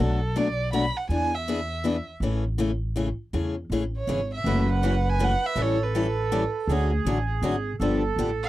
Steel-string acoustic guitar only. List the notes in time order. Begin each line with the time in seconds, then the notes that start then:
0.00 B2 F#3 A3 D4 F#4
0.36 B2 F#3 A3 D4 F#4
0.73 B2 F#3 A3 D4 F#4
1.10 E3 B3 D4 G#4
1.48 E3 B3 D4 G#4
1.84 E3 B3 D4 G#4
2.22 C#3 E3 A3 C#4 G#4
2.58 C#3 E3 A3 C#4 G#4
2.96 C#3 E3 A3 C#4 G#4
3.33 C#3 E3 A3 C#4 G#4
3.72 C#3 E3 A3 C#4 G#4
4.07 C#3 E3 A3 C#4 G#4
4.46 C#3 E3 A3 C#4 F#4
4.83 C#3 E3 A3 C#4 F#4
5.19 C#3 E3 A3 C#4 F#4
5.56 E3 G3 C#4 E4 A4
5.95 E3 G3 C#4 E4 A4
6.32 E3 G3 C#4 E4 A4
6.69 D3 F#3 A3 C#4 F#4
7.06 D3 F#3 A3 C#4 F#4
7.43 D3 F#3 A3 C#4 F#4
7.81 D3 F3 B3 D4 G4
8.18 D3 F3 B3 D4 G4